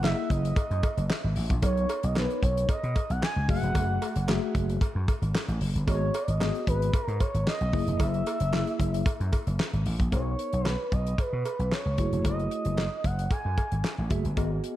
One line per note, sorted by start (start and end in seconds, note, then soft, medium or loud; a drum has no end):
0.00 0.12 F#1 loud
0.00 0.54 A#3 medium
0.00 0.54 E4 medium
0.00 0.54 G#4 medium
0.00 0.54 D#5 medium
0.00 0.32 E5 loud
0.00 cowbell medium
0.04 snare loud
0.04 clap medium
0.30 0.52 F#1 medium
0.30 1.36 D#5 loud
0.30 kick loud
0.30 closed hi-hat medium
0.45 closed hi-hat medium
0.56 muted slap bass stroke medium
0.56 kick loud
0.56 closed hi-hat medium
0.56 cowbell medium
0.71 0.81 F#2 medium
0.71 closed hi-hat soft
0.83 kick loud
0.83 closed hi-hat medium
0.83 cowbell medium
0.97 1.07 F#1 medium
0.97 closed hi-hat medium
1.10 1.59 E5 medium
1.10 snare loud
1.10 clap medium
1.10 cowbell medium
1.24 1.34 G#1 medium
1.36 1.48 A1 loud
1.36 open hi-hat medium
1.50 1.60 A#1 medium
1.50 kick medium
1.50 closed hi-hat medium
1.62 1.84 B1 loud
1.62 1.88 B3 medium
1.62 1.88 D#4 medium
1.62 1.88 A#4 medium
1.62 1.88 C#5 medium
1.62 2.06 C#5 loud
1.62 kick loud
1.62 closed hi-hat loud
1.62 cowbell medium
1.77 closed hi-hat soft
1.89 closed hi-hat medium
1.89 cowbell medium
2.03 2.25 B1 loud
2.03 2.19 D#5 medium
2.03 closed hi-hat medium
2.15 2.66 B3 medium
2.15 2.66 D#4 medium
2.15 2.67 A#4 medium
2.15 2.45 B4 medium
2.15 2.67 C#5 medium
2.15 snare loud
2.15 clap medium
2.15 cowbell medium
2.30 closed hi-hat soft
2.43 2.64 B1 medium
2.43 2.69 C#5 medium
2.43 kick medium
2.43 closed hi-hat medium
2.57 closed hi-hat medium
2.69 3.12 D#5 loud
2.69 muted slap bass stroke soft
2.69 kick loud
2.69 closed hi-hat medium
2.69 cowbell medium
2.83 2.93 B2 medium
2.83 closed hi-hat soft
2.96 kick medium
2.96 closed hi-hat medium
2.96 cowbell medium
3.10 3.20 B1 medium
3.10 3.22 F#5 loud
3.10 closed hi-hat medium
3.22 3.47 G#5 loud
3.22 snare loud
3.22 clap loud
3.22 cowbell medium
3.36 3.46 C#2 medium
3.48 3.60 F#1 loud
3.48 4.13 A3 medium
3.48 4.13 F#4 medium
3.48 4.13 G#4 medium
3.48 3.56 D#5 medium
3.48 4.51 F#5 loud
3.48 kick loud
3.48 open hi-hat medium
3.55 4.16 E5 medium
3.63 3.73 F1 medium
3.63 closed hi-hat medium
3.75 3.97 F#1 loud
3.75 kick loud
3.75 closed hi-hat medium
3.75 cowbell medium
4.02 closed hi-hat medium
4.02 cowbell medium
4.16 4.37 F#1 loud
4.16 closed hi-hat medium
4.28 4.79 A3 medium
4.28 4.79 F#4 medium
4.28 4.79 G#4 medium
4.28 4.79 E5 medium
4.28 snare loud
4.28 clap medium
4.28 cowbell medium
4.55 4.76 F#1 medium
4.55 kick loud
4.55 closed hi-hat medium
4.70 closed hi-hat medium
4.81 muted slap bass stroke soft
4.81 kick loud
4.81 closed hi-hat medium
4.81 cowbell medium
4.95 5.05 F#2 medium
5.08 kick loud
5.08 closed hi-hat medium
5.08 cowbell medium
5.22 5.32 G#1 medium
5.22 closed hi-hat medium
5.35 snare loud
5.35 clap medium
5.35 cowbell medium
5.48 5.58 A1 medium
5.48 closed hi-hat soft
5.61 5.72 F#1 loud
5.61 open hi-hat medium
5.75 5.85 G1 medium
5.75 closed hi-hat medium
5.87 6.09 G#1 loud
5.87 6.13 B3 medium
5.87 6.13 F#4 medium
5.87 6.13 G#4 medium
5.87 6.23 C#5 medium
5.87 6.13 D#5 medium
5.87 kick loud
5.87 closed hi-hat loud
5.87 cowbell medium
6.14 closed hi-hat medium
6.14 cowbell medium
6.22 6.31 D5 medium
6.28 6.49 G#1 loud
6.28 6.67 D#5 medium
6.28 closed hi-hat medium
6.40 6.91 B3 medium
6.40 6.91 F#4 medium
6.40 6.91 G#4 medium
6.40 6.92 D#5 medium
6.40 snare loud
6.40 clap medium
6.40 cowbell medium
6.55 closed hi-hat soft
6.67 6.89 G#1 medium
6.67 7.04 B4 loud
6.67 kick medium
6.67 closed hi-hat medium
6.82 closed hi-hat medium
6.93 muted slap bass stroke medium
6.93 kick loud
6.93 closed hi-hat medium
6.93 cowbell medium
7.04 7.18 G#2 medium
7.04 7.22 A#4 loud
7.08 closed hi-hat soft
7.20 7.47 C#5 medium
7.20 kick loud
7.20 closed hi-hat medium
7.20 cowbell medium
7.34 7.44 G#1 medium
7.34 closed hi-hat medium
7.47 8.02 D#5 loud
7.47 snare loud
7.47 clap medium
7.47 cowbell medium
7.61 7.71 B1 medium
7.61 closed hi-hat soft
7.73 7.85 F#1 loud
7.73 8.38 A#3 medium
7.73 8.38 E4 medium
7.73 8.38 G#4 medium
7.73 8.38 E5 medium
7.73 kick loud
7.73 open hi-hat medium
7.87 7.97 F1 medium
7.87 closed hi-hat medium
8.00 8.21 F#1 loud
8.00 9.59 E5 loud
8.00 kick loud
8.00 closed hi-hat loud
8.00 cowbell medium
8.14 closed hi-hat soft
8.26 closed hi-hat medium
8.26 cowbell medium
8.40 8.62 F#1 loud
8.40 closed hi-hat medium
8.53 9.04 A#3 medium
8.53 9.04 E4 medium
8.53 9.04 G#4 medium
8.53 9.04 E5 medium
8.53 snare loud
8.53 clap medium
8.53 cowbell medium
8.67 closed hi-hat soft
8.80 9.01 F#1 loud
8.80 kick medium
8.80 closed hi-hat medium
8.94 closed hi-hat medium
9.06 muted slap bass stroke medium
9.06 kick loud
9.06 closed hi-hat medium
9.06 cowbell medium
9.20 9.30 F#2 medium
9.20 closed hi-hat soft
9.33 kick medium
9.33 closed hi-hat medium
9.33 cowbell medium
9.47 9.57 F#1 medium
9.47 closed hi-hat medium
9.59 snare loud
9.59 clap medium
9.59 cowbell medium
9.73 9.83 G#1 medium
9.73 closed hi-hat soft
9.86 9.97 A1 loud
9.86 open hi-hat medium
10.00 10.10 A#1 medium
10.00 kick medium
10.00 closed hi-hat medium
10.12 10.34 B1 loud
10.12 10.63 B3 medium
10.12 10.63 D#4 medium
10.12 10.63 A#4 medium
10.12 10.63 C#5 medium
10.12 10.69 C#5 loud
10.12 kick medium
10.12 closed hi-hat medium
10.12 cowbell medium
10.39 closed hi-hat medium
10.53 10.74 B1 loud
10.53 closed hi-hat medium
10.65 10.95 B4 loud
10.65 snare medium
10.65 clap medium
10.65 cowbell medium
10.92 11.13 B1 medium
10.92 11.21 D#5 medium
10.92 kick medium
10.92 closed hi-hat medium
11.07 closed hi-hat medium
11.18 11.74 B4 medium
11.18 muted slap bass stroke soft
11.18 kick loud
11.18 closed hi-hat medium
11.18 cowbell medium
11.33 11.43 B2 medium
11.45 closed hi-hat medium
11.45 cowbell medium
11.59 11.69 B1 medium
11.59 closed hi-hat soft
11.72 12.25 C#5 medium
11.72 snare loud
11.72 clap medium
11.72 cowbell medium
11.86 11.96 C#2 medium
11.98 12.10 F#1 medium
11.98 12.83 A3 medium
11.98 12.84 E4 medium
11.98 12.84 F#4 medium
11.98 12.84 G#4 medium
11.98 kick medium
11.98 closed hi-hat medium
12.12 12.22 F1 medium
12.12 closed hi-hat soft
12.25 12.46 F#1 loud
12.25 13.07 D#5 loud
12.25 kick medium
12.25 closed hi-hat medium
12.25 cowbell medium
12.39 closed hi-hat soft
12.51 closed hi-hat medium
12.65 12.87 F#1 medium
12.65 closed hi-hat medium
12.77 snare loud
12.77 clap medium
12.77 cowbell medium
13.04 13.26 F#1 medium
13.04 13.31 F#5 loud
13.04 kick medium
13.04 closed hi-hat medium
13.19 closed hi-hat medium
13.31 14.07 G#5 loud
13.31 muted slap bass stroke soft
13.31 kick loud
13.31 closed hi-hat medium
13.31 cowbell medium
13.45 13.55 F#2 medium
13.58 kick medium
13.58 closed hi-hat medium
13.58 cowbell medium
13.72 13.82 G#1 medium
13.72 closed hi-hat soft
13.84 snare loud
13.84 clap medium
13.84 cowbell medium
13.98 14.08 A1 medium
14.10 14.22 F#1 medium
14.10 14.24 A3 medium
14.10 14.24 F#4 medium
14.10 14.24 G#4 medium
14.10 14.24 E5 loud
14.10 kick medium
14.10 closed hi-hat medium
14.25 14.35 G1 medium
14.25 closed hi-hat soft
14.37 14.58 G#1 loud
14.37 14.76 B3 medium
14.37 14.76 F#4 medium
14.37 14.76 G#4 medium
14.37 14.76 D#5 medium
14.37 kick medium
14.37 closed hi-hat medium
14.37 cowbell medium
14.64 closed hi-hat medium